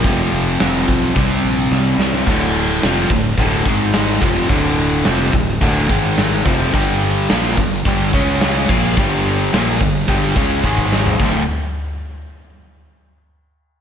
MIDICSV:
0, 0, Header, 1, 4, 480
1, 0, Start_track
1, 0, Key_signature, -1, "minor"
1, 0, Tempo, 557103
1, 38, Time_signature, 4, 2, 24, 8
1, 11898, End_track
2, 0, Start_track
2, 0, Title_t, "Overdriven electric guitar"
2, 0, Program_c, 0, 29
2, 32, Note_on_c, 0, 41, 97
2, 48, Note_on_c, 0, 48, 102
2, 61, Note_on_c, 0, 53, 97
2, 977, Note_off_c, 0, 48, 0
2, 979, Note_off_c, 0, 41, 0
2, 987, Note_on_c, 0, 48, 84
2, 994, Note_off_c, 0, 53, 0
2, 1003, Note_on_c, 0, 55, 83
2, 1017, Note_on_c, 0, 60, 92
2, 1937, Note_off_c, 0, 48, 0
2, 1945, Note_off_c, 0, 55, 0
2, 1952, Note_off_c, 0, 60, 0
2, 1955, Note_on_c, 0, 38, 97
2, 1960, Note_on_c, 0, 45, 92
2, 1966, Note_on_c, 0, 50, 114
2, 2428, Note_off_c, 0, 38, 0
2, 2431, Note_off_c, 0, 45, 0
2, 2434, Note_off_c, 0, 50, 0
2, 2440, Note_on_c, 0, 41, 89
2, 2446, Note_on_c, 0, 53, 113
2, 2447, Note_on_c, 0, 48, 94
2, 2671, Note_off_c, 0, 41, 0
2, 2674, Note_off_c, 0, 48, 0
2, 2674, Note_off_c, 0, 53, 0
2, 2676, Note_on_c, 0, 38, 53
2, 2683, Note_on_c, 0, 45, 65
2, 2868, Note_off_c, 0, 38, 0
2, 2872, Note_off_c, 0, 45, 0
2, 2914, Note_on_c, 0, 38, 83
2, 2920, Note_on_c, 0, 45, 96
2, 2923, Note_on_c, 0, 50, 105
2, 3148, Note_off_c, 0, 38, 0
2, 3151, Note_off_c, 0, 45, 0
2, 3152, Note_off_c, 0, 50, 0
2, 3158, Note_on_c, 0, 44, 85
2, 3163, Note_on_c, 0, 51, 108
2, 3167, Note_on_c, 0, 56, 111
2, 3630, Note_off_c, 0, 44, 0
2, 3632, Note_off_c, 0, 51, 0
2, 3635, Note_off_c, 0, 56, 0
2, 3637, Note_on_c, 0, 41, 90
2, 3644, Note_on_c, 0, 48, 113
2, 3649, Note_on_c, 0, 53, 109
2, 3866, Note_off_c, 0, 41, 0
2, 3870, Note_on_c, 0, 38, 100
2, 3873, Note_off_c, 0, 48, 0
2, 3875, Note_off_c, 0, 53, 0
2, 3878, Note_on_c, 0, 45, 104
2, 3878, Note_on_c, 0, 50, 106
2, 4346, Note_off_c, 0, 38, 0
2, 4350, Note_on_c, 0, 41, 92
2, 4351, Note_off_c, 0, 45, 0
2, 4351, Note_off_c, 0, 50, 0
2, 4355, Note_on_c, 0, 48, 101
2, 4362, Note_on_c, 0, 53, 98
2, 4587, Note_off_c, 0, 41, 0
2, 4589, Note_off_c, 0, 48, 0
2, 4593, Note_off_c, 0, 53, 0
2, 4598, Note_on_c, 0, 38, 63
2, 4604, Note_on_c, 0, 45, 78
2, 4790, Note_off_c, 0, 38, 0
2, 4793, Note_off_c, 0, 45, 0
2, 4832, Note_on_c, 0, 38, 81
2, 4839, Note_on_c, 0, 45, 104
2, 4843, Note_on_c, 0, 50, 112
2, 5068, Note_off_c, 0, 38, 0
2, 5072, Note_off_c, 0, 45, 0
2, 5074, Note_off_c, 0, 50, 0
2, 5076, Note_on_c, 0, 44, 92
2, 5084, Note_on_c, 0, 51, 110
2, 5086, Note_on_c, 0, 56, 102
2, 5551, Note_off_c, 0, 44, 0
2, 5555, Note_off_c, 0, 51, 0
2, 5556, Note_off_c, 0, 56, 0
2, 5558, Note_on_c, 0, 41, 99
2, 5562, Note_on_c, 0, 48, 97
2, 5565, Note_on_c, 0, 53, 99
2, 5792, Note_off_c, 0, 41, 0
2, 5794, Note_off_c, 0, 48, 0
2, 5795, Note_off_c, 0, 53, 0
2, 5802, Note_on_c, 0, 43, 89
2, 5805, Note_on_c, 0, 50, 91
2, 5812, Note_on_c, 0, 55, 121
2, 6275, Note_off_c, 0, 43, 0
2, 6276, Note_off_c, 0, 50, 0
2, 6280, Note_off_c, 0, 55, 0
2, 6284, Note_on_c, 0, 46, 81
2, 6288, Note_on_c, 0, 53, 97
2, 6296, Note_on_c, 0, 58, 95
2, 6515, Note_off_c, 0, 46, 0
2, 6518, Note_off_c, 0, 53, 0
2, 6521, Note_off_c, 0, 58, 0
2, 6529, Note_on_c, 0, 43, 64
2, 6535, Note_on_c, 0, 50, 67
2, 6718, Note_off_c, 0, 43, 0
2, 6720, Note_off_c, 0, 50, 0
2, 6771, Note_on_c, 0, 43, 97
2, 6774, Note_on_c, 0, 50, 90
2, 6783, Note_on_c, 0, 55, 101
2, 6999, Note_off_c, 0, 43, 0
2, 7001, Note_off_c, 0, 50, 0
2, 7005, Note_off_c, 0, 55, 0
2, 7006, Note_on_c, 0, 49, 103
2, 7009, Note_on_c, 0, 56, 90
2, 7015, Note_on_c, 0, 61, 109
2, 7478, Note_off_c, 0, 49, 0
2, 7479, Note_off_c, 0, 56, 0
2, 7482, Note_off_c, 0, 61, 0
2, 7485, Note_on_c, 0, 46, 82
2, 7494, Note_on_c, 0, 53, 99
2, 7495, Note_on_c, 0, 58, 108
2, 7717, Note_off_c, 0, 46, 0
2, 7722, Note_off_c, 0, 53, 0
2, 7722, Note_off_c, 0, 58, 0
2, 7735, Note_on_c, 0, 43, 96
2, 7739, Note_on_c, 0, 50, 104
2, 7746, Note_on_c, 0, 55, 111
2, 8203, Note_off_c, 0, 43, 0
2, 8205, Note_off_c, 0, 50, 0
2, 8208, Note_off_c, 0, 55, 0
2, 8211, Note_on_c, 0, 46, 90
2, 8216, Note_on_c, 0, 53, 84
2, 8222, Note_on_c, 0, 58, 84
2, 8441, Note_off_c, 0, 46, 0
2, 8443, Note_off_c, 0, 53, 0
2, 8446, Note_off_c, 0, 58, 0
2, 8450, Note_on_c, 0, 43, 61
2, 8458, Note_on_c, 0, 50, 76
2, 8640, Note_off_c, 0, 43, 0
2, 8643, Note_off_c, 0, 50, 0
2, 8689, Note_on_c, 0, 43, 89
2, 8697, Note_on_c, 0, 50, 97
2, 8697, Note_on_c, 0, 55, 99
2, 8920, Note_off_c, 0, 43, 0
2, 8924, Note_off_c, 0, 50, 0
2, 8924, Note_off_c, 0, 55, 0
2, 8927, Note_on_c, 0, 49, 85
2, 8931, Note_on_c, 0, 56, 92
2, 8941, Note_on_c, 0, 61, 100
2, 9159, Note_off_c, 0, 49, 0
2, 9161, Note_off_c, 0, 56, 0
2, 9166, Note_off_c, 0, 61, 0
2, 9173, Note_on_c, 0, 44, 93
2, 9179, Note_on_c, 0, 51, 89
2, 9183, Note_on_c, 0, 56, 90
2, 9642, Note_off_c, 0, 44, 0
2, 9645, Note_off_c, 0, 51, 0
2, 9647, Note_off_c, 0, 56, 0
2, 9651, Note_on_c, 0, 38, 105
2, 9659, Note_on_c, 0, 45, 101
2, 9663, Note_on_c, 0, 50, 102
2, 9840, Note_off_c, 0, 38, 0
2, 9844, Note_off_c, 0, 45, 0
2, 9846, Note_off_c, 0, 50, 0
2, 11898, End_track
3, 0, Start_track
3, 0, Title_t, "Fingered electric bass"
3, 0, Program_c, 1, 33
3, 35, Note_on_c, 1, 29, 90
3, 235, Note_off_c, 1, 29, 0
3, 276, Note_on_c, 1, 29, 84
3, 475, Note_off_c, 1, 29, 0
3, 525, Note_on_c, 1, 29, 96
3, 720, Note_off_c, 1, 29, 0
3, 761, Note_on_c, 1, 35, 100
3, 958, Note_off_c, 1, 35, 0
3, 1004, Note_on_c, 1, 36, 91
3, 1200, Note_off_c, 1, 36, 0
3, 1246, Note_on_c, 1, 34, 84
3, 1441, Note_off_c, 1, 34, 0
3, 1472, Note_on_c, 1, 36, 104
3, 1673, Note_off_c, 1, 36, 0
3, 1705, Note_on_c, 1, 36, 93
3, 1908, Note_off_c, 1, 36, 0
3, 1956, Note_on_c, 1, 26, 85
3, 2402, Note_off_c, 1, 26, 0
3, 2449, Note_on_c, 1, 29, 89
3, 2664, Note_off_c, 1, 29, 0
3, 2669, Note_on_c, 1, 26, 92
3, 2895, Note_off_c, 1, 26, 0
3, 2915, Note_on_c, 1, 26, 88
3, 3139, Note_off_c, 1, 26, 0
3, 3153, Note_on_c, 1, 32, 84
3, 3601, Note_off_c, 1, 32, 0
3, 3635, Note_on_c, 1, 29, 102
3, 3859, Note_off_c, 1, 29, 0
3, 3872, Note_on_c, 1, 26, 99
3, 4321, Note_off_c, 1, 26, 0
3, 4365, Note_on_c, 1, 29, 94
3, 4585, Note_off_c, 1, 29, 0
3, 4596, Note_on_c, 1, 26, 89
3, 4820, Note_off_c, 1, 26, 0
3, 4838, Note_on_c, 1, 26, 89
3, 5061, Note_off_c, 1, 26, 0
3, 5081, Note_on_c, 1, 32, 97
3, 5527, Note_off_c, 1, 32, 0
3, 5565, Note_on_c, 1, 29, 111
3, 5786, Note_off_c, 1, 29, 0
3, 5807, Note_on_c, 1, 31, 92
3, 6251, Note_off_c, 1, 31, 0
3, 6297, Note_on_c, 1, 34, 91
3, 6513, Note_off_c, 1, 34, 0
3, 6526, Note_on_c, 1, 31, 88
3, 6747, Note_off_c, 1, 31, 0
3, 6767, Note_on_c, 1, 31, 91
3, 6988, Note_off_c, 1, 31, 0
3, 7007, Note_on_c, 1, 37, 86
3, 7452, Note_off_c, 1, 37, 0
3, 7491, Note_on_c, 1, 34, 102
3, 7711, Note_off_c, 1, 34, 0
3, 7726, Note_on_c, 1, 31, 101
3, 8172, Note_off_c, 1, 31, 0
3, 8212, Note_on_c, 1, 34, 91
3, 8432, Note_off_c, 1, 34, 0
3, 8454, Note_on_c, 1, 31, 85
3, 8673, Note_off_c, 1, 31, 0
3, 8689, Note_on_c, 1, 31, 90
3, 8910, Note_off_c, 1, 31, 0
3, 8926, Note_on_c, 1, 37, 85
3, 9149, Note_off_c, 1, 37, 0
3, 9161, Note_on_c, 1, 32, 104
3, 9609, Note_off_c, 1, 32, 0
3, 9649, Note_on_c, 1, 26, 84
3, 9870, Note_off_c, 1, 26, 0
3, 11898, End_track
4, 0, Start_track
4, 0, Title_t, "Drums"
4, 33, Note_on_c, 9, 46, 88
4, 37, Note_on_c, 9, 36, 100
4, 119, Note_off_c, 9, 46, 0
4, 123, Note_off_c, 9, 36, 0
4, 274, Note_on_c, 9, 46, 68
4, 361, Note_off_c, 9, 46, 0
4, 517, Note_on_c, 9, 46, 97
4, 519, Note_on_c, 9, 38, 117
4, 603, Note_off_c, 9, 46, 0
4, 606, Note_off_c, 9, 38, 0
4, 644, Note_on_c, 9, 38, 37
4, 730, Note_off_c, 9, 38, 0
4, 760, Note_on_c, 9, 36, 81
4, 764, Note_on_c, 9, 46, 63
4, 846, Note_off_c, 9, 36, 0
4, 851, Note_off_c, 9, 46, 0
4, 1000, Note_on_c, 9, 36, 99
4, 1004, Note_on_c, 9, 46, 77
4, 1086, Note_off_c, 9, 36, 0
4, 1091, Note_off_c, 9, 46, 0
4, 1239, Note_on_c, 9, 46, 54
4, 1325, Note_off_c, 9, 46, 0
4, 1482, Note_on_c, 9, 38, 68
4, 1568, Note_off_c, 9, 38, 0
4, 1719, Note_on_c, 9, 38, 98
4, 1805, Note_off_c, 9, 38, 0
4, 1835, Note_on_c, 9, 38, 89
4, 1921, Note_off_c, 9, 38, 0
4, 1955, Note_on_c, 9, 36, 110
4, 1955, Note_on_c, 9, 49, 111
4, 2041, Note_off_c, 9, 36, 0
4, 2041, Note_off_c, 9, 49, 0
4, 2196, Note_on_c, 9, 46, 68
4, 2282, Note_off_c, 9, 46, 0
4, 2439, Note_on_c, 9, 46, 91
4, 2441, Note_on_c, 9, 38, 125
4, 2525, Note_off_c, 9, 46, 0
4, 2528, Note_off_c, 9, 38, 0
4, 2671, Note_on_c, 9, 36, 92
4, 2674, Note_on_c, 9, 46, 63
4, 2757, Note_off_c, 9, 36, 0
4, 2760, Note_off_c, 9, 46, 0
4, 2904, Note_on_c, 9, 46, 89
4, 2909, Note_on_c, 9, 36, 103
4, 2990, Note_off_c, 9, 46, 0
4, 2995, Note_off_c, 9, 36, 0
4, 3149, Note_on_c, 9, 36, 108
4, 3149, Note_on_c, 9, 46, 51
4, 3235, Note_off_c, 9, 36, 0
4, 3236, Note_off_c, 9, 46, 0
4, 3390, Note_on_c, 9, 46, 99
4, 3392, Note_on_c, 9, 38, 127
4, 3476, Note_off_c, 9, 46, 0
4, 3479, Note_off_c, 9, 38, 0
4, 3626, Note_on_c, 9, 46, 70
4, 3631, Note_on_c, 9, 36, 110
4, 3712, Note_off_c, 9, 46, 0
4, 3717, Note_off_c, 9, 36, 0
4, 3869, Note_on_c, 9, 46, 82
4, 3872, Note_on_c, 9, 36, 111
4, 3956, Note_off_c, 9, 46, 0
4, 3959, Note_off_c, 9, 36, 0
4, 4112, Note_on_c, 9, 46, 74
4, 4198, Note_off_c, 9, 46, 0
4, 4350, Note_on_c, 9, 46, 90
4, 4353, Note_on_c, 9, 38, 120
4, 4436, Note_off_c, 9, 46, 0
4, 4439, Note_off_c, 9, 38, 0
4, 4592, Note_on_c, 9, 46, 63
4, 4595, Note_on_c, 9, 36, 94
4, 4678, Note_off_c, 9, 46, 0
4, 4681, Note_off_c, 9, 36, 0
4, 4835, Note_on_c, 9, 46, 90
4, 4836, Note_on_c, 9, 36, 108
4, 4921, Note_off_c, 9, 46, 0
4, 4922, Note_off_c, 9, 36, 0
4, 5078, Note_on_c, 9, 36, 99
4, 5078, Note_on_c, 9, 46, 57
4, 5164, Note_off_c, 9, 36, 0
4, 5164, Note_off_c, 9, 46, 0
4, 5322, Note_on_c, 9, 46, 83
4, 5324, Note_on_c, 9, 38, 118
4, 5408, Note_off_c, 9, 46, 0
4, 5410, Note_off_c, 9, 38, 0
4, 5563, Note_on_c, 9, 36, 112
4, 5564, Note_on_c, 9, 46, 61
4, 5649, Note_off_c, 9, 36, 0
4, 5650, Note_off_c, 9, 46, 0
4, 5804, Note_on_c, 9, 36, 106
4, 5808, Note_on_c, 9, 46, 73
4, 5890, Note_off_c, 9, 36, 0
4, 5894, Note_off_c, 9, 46, 0
4, 6046, Note_on_c, 9, 46, 60
4, 6132, Note_off_c, 9, 46, 0
4, 6286, Note_on_c, 9, 46, 90
4, 6288, Note_on_c, 9, 38, 125
4, 6372, Note_off_c, 9, 46, 0
4, 6374, Note_off_c, 9, 38, 0
4, 6526, Note_on_c, 9, 36, 86
4, 6530, Note_on_c, 9, 46, 63
4, 6612, Note_off_c, 9, 36, 0
4, 6616, Note_off_c, 9, 46, 0
4, 6766, Note_on_c, 9, 36, 111
4, 6769, Note_on_c, 9, 46, 81
4, 6852, Note_off_c, 9, 36, 0
4, 6855, Note_off_c, 9, 46, 0
4, 7007, Note_on_c, 9, 36, 97
4, 7009, Note_on_c, 9, 46, 56
4, 7093, Note_off_c, 9, 36, 0
4, 7095, Note_off_c, 9, 46, 0
4, 7246, Note_on_c, 9, 46, 92
4, 7248, Note_on_c, 9, 38, 116
4, 7332, Note_off_c, 9, 46, 0
4, 7335, Note_off_c, 9, 38, 0
4, 7488, Note_on_c, 9, 36, 115
4, 7491, Note_on_c, 9, 57, 98
4, 7574, Note_off_c, 9, 36, 0
4, 7577, Note_off_c, 9, 57, 0
4, 7729, Note_on_c, 9, 36, 103
4, 7815, Note_off_c, 9, 36, 0
4, 7978, Note_on_c, 9, 46, 66
4, 8064, Note_off_c, 9, 46, 0
4, 8216, Note_on_c, 9, 46, 105
4, 8219, Note_on_c, 9, 38, 119
4, 8302, Note_off_c, 9, 46, 0
4, 8305, Note_off_c, 9, 38, 0
4, 8449, Note_on_c, 9, 36, 103
4, 8535, Note_off_c, 9, 36, 0
4, 8685, Note_on_c, 9, 46, 91
4, 8686, Note_on_c, 9, 36, 110
4, 8772, Note_off_c, 9, 36, 0
4, 8772, Note_off_c, 9, 46, 0
4, 8925, Note_on_c, 9, 36, 100
4, 8930, Note_on_c, 9, 46, 55
4, 9012, Note_off_c, 9, 36, 0
4, 9016, Note_off_c, 9, 46, 0
4, 9164, Note_on_c, 9, 36, 74
4, 9250, Note_off_c, 9, 36, 0
4, 9286, Note_on_c, 9, 36, 73
4, 9372, Note_off_c, 9, 36, 0
4, 9411, Note_on_c, 9, 38, 97
4, 9498, Note_off_c, 9, 38, 0
4, 9532, Note_on_c, 9, 43, 97
4, 9618, Note_off_c, 9, 43, 0
4, 9647, Note_on_c, 9, 36, 99
4, 9656, Note_on_c, 9, 49, 84
4, 9733, Note_off_c, 9, 36, 0
4, 9742, Note_off_c, 9, 49, 0
4, 11898, End_track
0, 0, End_of_file